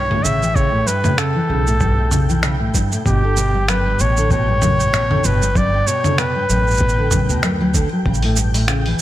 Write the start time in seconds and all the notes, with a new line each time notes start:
Already playing: B1 C#5 G5 G6
0.10 A2, mid tom
0.24 A1 C#3 E5, cabasa
0.41 E3, cabasa
0.55 C#3 C#5, kick, cabasa
0.72 A2
0.86 G2 B4, cabasa
1.04 A2, mid tom, cabasa
1.17 C#3 A4, finger snap, cabasa
1.36 E3
1.49 B1 C#3
1.67 A2, cabasa
1.80 G2, kick, cabasa
1.98 A2
2.11 C#3, mid tom, cabasa
2.29 E3, cabasa
2.43 C#3, finger snap, cabasa
2.60 A2
2.74 G2, kick, cabasa
2.92 A2, cabasa
3.06 G1 B2 G4, kick, cabasa
3.24 D3
3.37 B2, cabasa
3.54 G2
3.68 F#2 B4, finger snap, cabasa
3.86 G2
3.99 A1 B2 C#5, cabasa
4.17 D3, cabasa
4.31 B2 C#5, kick, cabasa
4.48 G2
4.62 F#2, mid tom, cabasa
4.79 G2, cabasa
4.93 B2, finger snap, cabasa
5.10 D3, mid tom
5.24 G1 B2 B4, cabasa
5.42 G2, cabasa
5.55 F#2 D5, kick, cabasa
5.73 G2
5.87 B2 C#5, cabasa
6.04 D3, mid tom, cabasa
6.18 B2 B4, finger snap, cabasa
6.36 G2
6.50 A1 F#2, cabasa
6.67 G2, cabasa
6.71 cabasa
6.74 cabasa
6.77 B2, kick, cabasa
6.89 cabasa
6.98 D3
7.11 F#2, kick, mid tom, cabasa
7.29 D2 B2, cabasa
7.43 F#2, finger snap, cabasa
7.61 F#3
7.74 D3, kick, cabasa
7.92 F#3
8.06 A1 C#3, kick
8.14 cabasa
8.22 A2, open hi-hat
8.36 G2, cabasa
8.54 A2, open hi-hat, cabasa
8.68 C#3, finger snap, cabasa
8.86 E3, open hi-hat